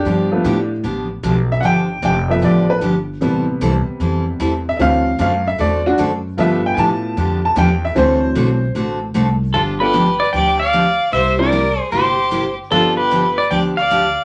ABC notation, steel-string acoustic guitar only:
X:1
M:4/4
L:1/8
Q:"Swing" 1/4=152
K:Gmix
V:1 name="Steel-string acoustic guitar"
[D,F,B,DG] z [D,F,B,DG] z [D,F,B,DG] z [D,F,B,DG] z | [D,F,B,DG] z [D,F,B,DG] z [D,F,B,DG] z [D,F,B,DG] z | [E,G,CEA] z [E,G,CEA] z [E,G,CEA] z [E,G,CEA] z | [D,A,C^FA] z [D,A,CFA] z [D,A,CFA] z [D,A,CFA] z |
[D,F,B,DG] z [D,F,B,DG] z [D,F,B,DG] z [D,F,B,DG] z | [D,A,C^FA] z [D,A,CFA] z [D,A,CFA] z [D,A,CFA] z | [D,F,B,DG] z [D,F,B,DG] z [D,F,B,DG] z [D,F,B,DG] z | [C,G,_B,EG] z [C,G,B,EG] z [C,G,B,EG] z [C,G,B,EG] z |
[D,F,B,DG] z [D,F,B,DG] z [D,F,B,DG] z [D,F,B,DG] z |]